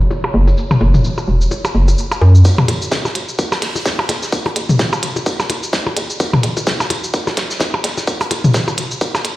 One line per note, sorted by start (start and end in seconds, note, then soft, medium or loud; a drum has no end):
0.00 2.46 C#5 medium
0.00 shaker soft
0.11 percussion blips soft
0.11 shaker soft
0.24 percussion blips medium
0.34 0.54 F#1 loud
0.47 percussion blips soft
0.47 shaker soft
0.57 shaker soft
0.71 mid tom medium
0.71 percussion blips medium
0.71 shaker soft
0.81 1.01 F#1 medium
0.81 percussion blips soft
0.94 mid tom medium
0.94 shaker soft
1.04 shaker soft
1.18 percussion blips soft
1.18 shaker soft
1.28 1.48 E1 medium
1.41 shaker soft
1.51 percussion blips soft
1.51 shaker soft
1.65 percussion blips medium
1.65 shaker soft
1.75 1.95 F#1 medium
1.88 percussion blips soft
1.88 shaker soft
1.98 shaker soft
2.11 percussion blips medium
2.11 shaker soft
2.21 2.41 F#2 medium
2.21 percussion blips soft
2.35 shaker soft
2.45 kick loud
2.45 tambourine medium
2.45 shaker medium
2.58 mid tom medium
2.58 percussion blips medium
2.68 2.88 F#1 medium
2.68 closed hi-hat medium
2.68 tambourine medium
2.68 percussion blips soft
2.82 shaker soft
2.91 kick loud
2.91 snare loud
2.91 tambourine medium
2.91 shaker medium
3.05 snare soft
3.05 percussion blips soft
3.05 shaker soft
3.15 3.35 E1 medium
3.15 closed hi-hat medium
3.15 tambourine medium
3.29 shaker soft
3.39 kick loud
3.39 tambourine medium
3.39 percussion blips soft
3.39 shaker medium
3.52 snare soft
3.52 percussion blips medium
3.52 shaker soft
3.62 3.82 F#1 medium
3.62 snare medium
3.62 closed hi-hat medium
3.62 open hi-hat medium
3.76 percussion blips soft
3.76 shaker soft
3.86 kick loud
3.86 snare loud
3.86 tambourine medium
3.86 shaker medium
3.99 percussion blips medium
4.09 4.29 F#1 loud
4.09 snare soft
4.09 closed hi-hat medium
4.09 tambourine medium
4.09 percussion blips soft
4.23 snare soft
4.23 shaker soft
4.32 kick loud
4.32 tambourine medium
4.32 shaker medium
4.46 closed hi-hat soft
4.46 percussion blips soft
4.56 4.76 F#1 loud
4.56 closed hi-hat medium
4.56 tambourine medium
4.69 mid tom medium
4.69 shaker soft
4.79 kick loud
4.79 snare loud
4.79 tambourine medium
4.79 percussion blips soft
4.79 shaker medium
4.93 percussion blips medium
4.93 shaker soft
5.03 5.23 E1 medium
5.03 closed hi-hat medium
5.03 tambourine medium
5.16 percussion blips soft
5.16 shaker soft
5.26 kick loud
5.26 tambourine medium
5.26 shaker medium
5.40 snare soft
5.40 percussion blips medium
5.40 shaker soft
5.50 5.70 F#1 medium
5.50 closed hi-hat medium
5.50 tambourine medium
5.50 percussion blips soft
5.63 shaker soft
5.73 kick loud
5.73 snare loud
5.73 tambourine medium
5.73 shaker medium
5.87 percussion blips soft
5.97 6.16 F#1 loud
5.97 closed hi-hat medium
5.97 tambourine medium
6.10 shaker soft
6.20 kick loud
6.20 tambourine medium
6.20 percussion blips soft
6.20 shaker medium
6.33 mid tom medium
6.33 percussion blips medium
6.43 6.63 F#1 loud
6.43 closed hi-hat loud
6.43 tambourine medium
6.57 percussion blips soft
6.57 shaker soft
6.67 kick loud
6.67 snare loud
6.67 tambourine medium
6.67 shaker soft
6.80 snare medium
6.80 percussion blips medium
6.80 shaker soft
6.90 7.10 E1 medium
6.90 closed hi-hat medium
6.90 tambourine medium
6.90 percussion blips soft
7.04 shaker soft
7.14 kick loud
7.14 tambourine medium
7.14 shaker soft
7.27 snare soft
7.27 percussion blips soft
7.27 shaker soft
7.37 7.57 F#1 medium
7.37 snare loud
7.37 closed hi-hat medium
7.37 tambourine medium
7.51 snare soft
7.51 shaker soft
7.60 kick loud
7.60 snare loud
7.60 tambourine medium
7.60 percussion blips soft
7.60 shaker medium
7.74 percussion blips medium
7.84 8.04 F#1 loud
7.84 snare soft
7.84 closed hi-hat medium
7.84 tambourine medium
7.97 snare soft
7.97 percussion blips soft
7.97 shaker soft
8.07 kick loud
8.07 tambourine medium
8.07 shaker soft
8.20 closed hi-hat soft
8.20 percussion blips medium
8.20 shaker soft
8.31 8.51 F#1 medium
8.31 closed hi-hat medium
8.31 tambourine medium
8.31 percussion blips soft
8.44 mid tom medium
8.44 shaker soft
8.53 kick loud
8.53 snare loud
8.53 tambourine medium
8.53 shaker soft
8.68 percussion blips soft
8.68 shaker soft
8.78 8.98 E1 medium
8.78 closed hi-hat medium
8.78 tambourine medium
8.91 shaker soft
9.01 kick loud
9.01 tambourine medium
9.01 percussion blips soft
9.01 shaker soft
9.15 snare soft
9.15 percussion blips medium
9.15 shaker soft
9.25 9.36 F#1 medium
9.25 closed hi-hat medium
9.25 tambourine medium